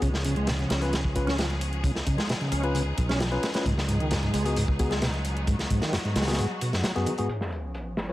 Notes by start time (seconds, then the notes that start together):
Already playing: B3
0.02 C#2 C#3 F3 C#4 G#4, kick, closed hi-hat
0.14 snare
0.25 C#3, closed hi-hat
0.36 G#3, closed hi-hat
0.47 B2, snare, closed hi-hat
0.59 C#3, closed hi-hat
0.70 C#2 C#4, snare, closed hi-hat
0.82 C#4 F4 B4, closed hi-hat
0.92 C#3, snare, closed hi-hat
1.04 kick
1.15 C#4 F4 B4, kick, closed hi-hat
1.27 C#4, snare, closed hi-hat
1.38 F3, snare, closed hi-hat
1.50 closed hi-hat
1.61 closed hi-hat
1.73 closed hi-hat
1.84 C#3 D#4, kick, closed hi-hat
1.96 snare
2.06 C#3, kick, closed hi-hat
2.18 G#3, snare, closed hi-hat
2.29 B2, snare, closed hi-hat
2.41 C#3, closed hi-hat
2.52 C#2 C#4, closed hi-hat
2.63 C#4 F4 B4, closed hi-hat
2.74 C#3, closed hi-hat
2.98 B1, kick, closed hi-hat
3.09 C#4, snare, closed hi-hat
3.20 F3, snare, closed hi-hat
3.32 C#4 F4 B4, closed hi-hat
3.43 snare, closed hi-hat
3.54 C#4 F4 B4, snare, closed hi-hat
3.65 C#2 G#2 F#3 B3, kick, closed hi-hat
3.78 snare
3.88 G#2, closed hi-hat
4.00 D#3, closed hi-hat
4.11 F#2, snare, closed hi-hat
4.23 G#2, closed hi-hat
4.34 C#2 G#3, closed hi-hat
4.45 B3 F#4 G#4, closed hi-hat
4.56 G#2, closed hi-hat
4.68 kick
4.79 B3 F#4 G#4, kick, closed hi-hat
4.91 G#3, snare, closed hi-hat
5.02 B2, snare, closed hi-hat
5.14 closed hi-hat
5.25 closed hi-hat
5.37 closed hi-hat
5.47 G#2 F#4, kick, closed hi-hat
5.59 snare, closed hi-hat
5.70 G#2, kick, closed hi-hat
5.82 D#3, snare, closed hi-hat
5.93 F#2, snare, closed hi-hat
6.04 G#2, closed hi-hat
6.16 C#2 G#3, snare, closed hi-hat
6.22 snare, closed hi-hat
6.27 B3 F#4 G#4, snare, closed hi-hat
6.33 snare, closed hi-hat
6.38 G#2, closed hi-hat
6.61 B2, closed hi-hat
6.73 F#2, snare, closed hi-hat
6.84 F#3, snare, closed hi-hat
6.96 F#2 B3 F#4 G#4, closed hi-hat
7.06 D#3, closed hi-hat
7.18 G#2 B3 F#4 G#4, closed hi-hat
7.29 F3 B3 C#4 G#4, closed hi-hat, sub drop
7.41 snare
7.52 closed hi-hat
7.64 closed hi-hat
7.74 closed hi-hat
7.87 closed hi-hat
7.97 snare, closed hi-hat
8.09 F4 B4 C#5, closed hi-hat